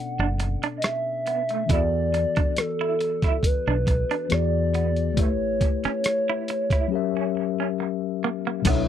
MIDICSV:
0, 0, Header, 1, 9, 480
1, 0, Start_track
1, 0, Tempo, 869565
1, 935, Time_signature, 4, 2, 24, 8
1, 4903, End_track
2, 0, Start_track
2, 0, Title_t, "Soft synth lead"
2, 0, Program_c, 0, 80
2, 0, Note_on_c, 0, 78, 111
2, 348, Note_off_c, 0, 78, 0
2, 428, Note_on_c, 0, 75, 76
2, 463, Note_on_c, 0, 76, 102
2, 472, Note_off_c, 0, 75, 0
2, 944, Note_on_c, 0, 74, 103
2, 952, Note_off_c, 0, 76, 0
2, 1426, Note_on_c, 0, 69, 100
2, 1434, Note_off_c, 0, 74, 0
2, 1908, Note_on_c, 0, 71, 97
2, 1916, Note_off_c, 0, 69, 0
2, 2388, Note_on_c, 0, 74, 99
2, 2397, Note_off_c, 0, 71, 0
2, 2868, Note_on_c, 0, 73, 94
2, 2876, Note_off_c, 0, 74, 0
2, 3229, Note_off_c, 0, 73, 0
2, 3235, Note_on_c, 0, 73, 86
2, 4167, Note_off_c, 0, 73, 0
2, 4903, End_track
3, 0, Start_track
3, 0, Title_t, "Tine electric piano"
3, 0, Program_c, 1, 4
3, 0, Control_c, 1, 64, 127
3, 0, Note_on_c, 1, 47, 58
3, 0, Note_on_c, 1, 59, 42
3, 0, Note_on_c, 1, 61, 36
3, 0, Note_on_c, 1, 62, 44
3, 0, Note_on_c, 1, 69, 49
3, 0, Note_on_c, 1, 74, 58
3, 905, Note_off_c, 1, 47, 0
3, 911, Note_off_c, 1, 59, 0
3, 916, Note_on_c, 1, 52, 51
3, 920, Note_off_c, 1, 69, 0
3, 926, Note_off_c, 1, 74, 0
3, 926, Note_on_c, 1, 59, 48
3, 934, Note_off_c, 1, 62, 0
3, 936, Note_on_c, 1, 66, 48
3, 943, Control_c, 1, 64, 0
3, 944, Note_off_c, 1, 61, 0
3, 947, Note_on_c, 1, 69, 47
3, 957, Note_on_c, 1, 74, 62
3, 1024, Control_c, 1, 64, 127
3, 2344, Note_off_c, 1, 52, 0
3, 2349, Note_off_c, 1, 59, 0
3, 2354, Note_off_c, 1, 66, 0
3, 2359, Note_off_c, 1, 69, 0
3, 2364, Note_off_c, 1, 74, 0
3, 2367, Note_on_c, 1, 52, 54
3, 2372, Note_on_c, 1, 59, 55
3, 2378, Note_on_c, 1, 66, 55
3, 2382, Control_c, 1, 64, 0
3, 2383, Note_on_c, 1, 68, 57
3, 2388, Note_on_c, 1, 74, 64
3, 2475, Control_c, 1, 64, 127
3, 2839, Note_on_c, 1, 57, 51
3, 2849, Note_on_c, 1, 64, 48
3, 2851, Note_off_c, 1, 52, 0
3, 2854, Note_off_c, 1, 59, 0
3, 2856, Note_off_c, 1, 66, 0
3, 2859, Note_off_c, 1, 68, 0
3, 2860, Note_on_c, 1, 67, 49
3, 2861, Control_c, 1, 64, 0
3, 2862, Note_off_c, 1, 74, 0
3, 2870, Note_on_c, 1, 71, 50
3, 2880, Note_on_c, 1, 73, 55
3, 2975, Control_c, 1, 64, 127
3, 3788, Note_off_c, 1, 57, 0
3, 3793, Note_off_c, 1, 64, 0
3, 3798, Note_on_c, 1, 54, 64
3, 3799, Note_off_c, 1, 67, 0
3, 3803, Note_off_c, 1, 71, 0
3, 3808, Note_off_c, 1, 73, 0
3, 3809, Note_on_c, 1, 61, 57
3, 3819, Note_on_c, 1, 67, 62
3, 3822, Control_c, 1, 64, 0
3, 3829, Note_on_c, 1, 70, 57
3, 3839, Note_on_c, 1, 76, 77
3, 3931, Control_c, 1, 64, 127
3, 4747, Note_off_c, 1, 54, 0
3, 4753, Note_off_c, 1, 61, 0
3, 4758, Note_off_c, 1, 67, 0
3, 4759, Note_on_c, 1, 47, 70
3, 4763, Note_off_c, 1, 70, 0
3, 4766, Note_on_c, 1, 54, 62
3, 4768, Note_off_c, 1, 76, 0
3, 4775, Note_on_c, 1, 62, 61
3, 4781, Control_c, 1, 64, 0
3, 4783, Note_on_c, 1, 69, 56
3, 4791, Note_on_c, 1, 73, 62
3, 4800, Note_on_c, 1, 76, 80
3, 4883, Control_c, 1, 64, 127
3, 4903, Note_off_c, 1, 47, 0
3, 4903, Note_off_c, 1, 54, 0
3, 4903, Note_off_c, 1, 62, 0
3, 4903, Note_off_c, 1, 69, 0
3, 4903, Note_off_c, 1, 73, 0
3, 4903, Note_off_c, 1, 76, 0
3, 4903, End_track
4, 0, Start_track
4, 0, Title_t, "Clean electric guitar"
4, 0, Program_c, 2, 27
4, 111, Note_on_c, 2, 62, 62
4, 179, Note_off_c, 2, 62, 0
4, 351, Note_on_c, 2, 62, 70
4, 419, Note_off_c, 2, 62, 0
4, 704, Note_on_c, 2, 59, 70
4, 781, Note_off_c, 2, 59, 0
4, 831, Note_on_c, 2, 57, 59
4, 899, Note_off_c, 2, 57, 0
4, 942, Note_on_c, 2, 64, 61
4, 1020, Note_off_c, 2, 64, 0
4, 1307, Note_on_c, 2, 62, 64
4, 1376, Note_off_c, 2, 62, 0
4, 1551, Note_on_c, 2, 64, 70
4, 1619, Note_off_c, 2, 64, 0
4, 1790, Note_on_c, 2, 64, 68
4, 1858, Note_off_c, 2, 64, 0
4, 2030, Note_on_c, 2, 62, 68
4, 2098, Note_off_c, 2, 62, 0
4, 2269, Note_on_c, 2, 62, 61
4, 2338, Note_off_c, 2, 62, 0
4, 2622, Note_on_c, 2, 59, 66
4, 2700, Note_off_c, 2, 59, 0
4, 2865, Note_on_c, 2, 57, 68
4, 2941, Note_off_c, 2, 57, 0
4, 3230, Note_on_c, 2, 61, 73
4, 3298, Note_off_c, 2, 61, 0
4, 3475, Note_on_c, 2, 64, 67
4, 3541, Note_off_c, 2, 64, 0
4, 3713, Note_on_c, 2, 64, 71
4, 3780, Note_off_c, 2, 64, 0
4, 3956, Note_on_c, 2, 61, 60
4, 4022, Note_off_c, 2, 61, 0
4, 4195, Note_on_c, 2, 61, 59
4, 4262, Note_off_c, 2, 61, 0
4, 4550, Note_on_c, 2, 58, 72
4, 4625, Note_off_c, 2, 58, 0
4, 4675, Note_on_c, 2, 58, 60
4, 4742, Note_off_c, 2, 58, 0
4, 4787, Note_on_c, 2, 59, 69
4, 4863, Note_off_c, 2, 59, 0
4, 4903, End_track
5, 0, Start_track
5, 0, Title_t, "Analog synth pad"
5, 0, Program_c, 3, 89
5, 4769, Note_on_c, 3, 73, 64
5, 4770, Note_on_c, 3, 57, 57
5, 4770, Note_on_c, 3, 64, 69
5, 4771, Note_on_c, 3, 50, 69
5, 4903, Note_off_c, 3, 50, 0
5, 4903, Note_off_c, 3, 57, 0
5, 4903, Note_off_c, 3, 64, 0
5, 4903, Note_off_c, 3, 73, 0
5, 4903, End_track
6, 0, Start_track
6, 0, Title_t, "Fretless electric bass"
6, 0, Program_c, 4, 35
6, 106, Note_on_c, 4, 30, 81
6, 302, Note_off_c, 4, 30, 0
6, 937, Note_on_c, 4, 40, 106
6, 1239, Note_off_c, 4, 40, 0
6, 2027, Note_on_c, 4, 35, 69
6, 2223, Note_off_c, 4, 35, 0
6, 2383, Note_on_c, 4, 40, 81
6, 2858, Note_off_c, 4, 40, 0
6, 2858, Note_on_c, 4, 33, 99
6, 3159, Note_off_c, 4, 33, 0
6, 4778, Note_on_c, 4, 35, 112
6, 4903, Note_off_c, 4, 35, 0
6, 4903, End_track
7, 0, Start_track
7, 0, Title_t, "Muted clean electric guitar strokes"
7, 221, Note_on_c, 9, 29, 37
7, 276, Note_off_c, 9, 29, 0
7, 464, Note_on_c, 9, 29, 41
7, 519, Note_off_c, 9, 29, 0
7, 1183, Note_on_c, 9, 29, 37
7, 1238, Note_off_c, 9, 29, 0
7, 1662, Note_on_c, 9, 29, 41
7, 1717, Note_off_c, 9, 29, 0
7, 2141, Note_on_c, 9, 29, 38
7, 2197, Note_off_c, 9, 29, 0
7, 3104, Note_on_c, 9, 29, 34
7, 3159, Note_off_c, 9, 29, 0
7, 3589, Note_on_c, 9, 29, 36
7, 3644, Note_off_c, 9, 29, 0
7, 4069, Note_on_c, 9, 29, 37
7, 4124, Note_off_c, 9, 29, 0
7, 4307, Note_on_c, 9, 29, 41
7, 4362, Note_off_c, 9, 29, 0
7, 4903, End_track
8, 0, Start_track
8, 0, Title_t, "Muted fretless electric bass strokes"
8, 1312, Note_on_c, 9, 29, 42
8, 1367, Note_off_c, 9, 29, 0
8, 1896, Note_on_c, 9, 29, 44
8, 1951, Note_off_c, 9, 29, 0
8, 3229, Note_on_c, 9, 29, 45
8, 3284, Note_off_c, 9, 29, 0
8, 4903, End_track
9, 0, Start_track
9, 0, Title_t, "Drums"
9, 218, Note_on_c, 9, 42, 55
9, 273, Note_off_c, 9, 42, 0
9, 347, Note_on_c, 9, 42, 31
9, 402, Note_off_c, 9, 42, 0
9, 453, Note_on_c, 9, 42, 66
9, 465, Note_on_c, 9, 37, 104
9, 508, Note_off_c, 9, 42, 0
9, 520, Note_off_c, 9, 37, 0
9, 699, Note_on_c, 9, 42, 49
9, 754, Note_off_c, 9, 42, 0
9, 822, Note_on_c, 9, 42, 31
9, 878, Note_off_c, 9, 42, 0
9, 934, Note_on_c, 9, 36, 99
9, 936, Note_on_c, 9, 42, 78
9, 989, Note_off_c, 9, 36, 0
9, 992, Note_off_c, 9, 42, 0
9, 1181, Note_on_c, 9, 42, 55
9, 1236, Note_off_c, 9, 42, 0
9, 1303, Note_on_c, 9, 42, 30
9, 1309, Note_on_c, 9, 36, 86
9, 1358, Note_off_c, 9, 42, 0
9, 1364, Note_off_c, 9, 36, 0
9, 1416, Note_on_c, 9, 42, 80
9, 1426, Note_on_c, 9, 37, 113
9, 1471, Note_off_c, 9, 42, 0
9, 1481, Note_off_c, 9, 37, 0
9, 1659, Note_on_c, 9, 42, 54
9, 1714, Note_off_c, 9, 42, 0
9, 1780, Note_on_c, 9, 36, 78
9, 1784, Note_on_c, 9, 42, 25
9, 1793, Note_on_c, 9, 37, 27
9, 1835, Note_off_c, 9, 36, 0
9, 1839, Note_off_c, 9, 42, 0
9, 1849, Note_off_c, 9, 37, 0
9, 1892, Note_on_c, 9, 36, 84
9, 1899, Note_on_c, 9, 42, 89
9, 1947, Note_off_c, 9, 36, 0
9, 1954, Note_off_c, 9, 42, 0
9, 2136, Note_on_c, 9, 36, 83
9, 2139, Note_on_c, 9, 42, 65
9, 2191, Note_off_c, 9, 36, 0
9, 2195, Note_off_c, 9, 42, 0
9, 2268, Note_on_c, 9, 42, 32
9, 2323, Note_off_c, 9, 42, 0
9, 2373, Note_on_c, 9, 42, 70
9, 2385, Note_on_c, 9, 37, 106
9, 2428, Note_off_c, 9, 42, 0
9, 2440, Note_off_c, 9, 37, 0
9, 2618, Note_on_c, 9, 42, 49
9, 2673, Note_off_c, 9, 42, 0
9, 2740, Note_on_c, 9, 42, 30
9, 2795, Note_off_c, 9, 42, 0
9, 2855, Note_on_c, 9, 36, 98
9, 2856, Note_on_c, 9, 42, 74
9, 2910, Note_off_c, 9, 36, 0
9, 2911, Note_off_c, 9, 42, 0
9, 3096, Note_on_c, 9, 36, 80
9, 3097, Note_on_c, 9, 42, 52
9, 3151, Note_off_c, 9, 36, 0
9, 3153, Note_off_c, 9, 42, 0
9, 3223, Note_on_c, 9, 42, 30
9, 3233, Note_on_c, 9, 37, 33
9, 3278, Note_off_c, 9, 42, 0
9, 3288, Note_off_c, 9, 37, 0
9, 3335, Note_on_c, 9, 42, 84
9, 3344, Note_on_c, 9, 37, 98
9, 3390, Note_off_c, 9, 42, 0
9, 3399, Note_off_c, 9, 37, 0
9, 3578, Note_on_c, 9, 42, 58
9, 3633, Note_off_c, 9, 42, 0
9, 3700, Note_on_c, 9, 36, 80
9, 3704, Note_on_c, 9, 42, 29
9, 3713, Note_on_c, 9, 37, 29
9, 3755, Note_off_c, 9, 36, 0
9, 3759, Note_off_c, 9, 42, 0
9, 3768, Note_off_c, 9, 37, 0
9, 4774, Note_on_c, 9, 49, 88
9, 4775, Note_on_c, 9, 36, 91
9, 4776, Note_on_c, 9, 42, 91
9, 4829, Note_off_c, 9, 49, 0
9, 4830, Note_off_c, 9, 36, 0
9, 4831, Note_off_c, 9, 42, 0
9, 4903, End_track
0, 0, End_of_file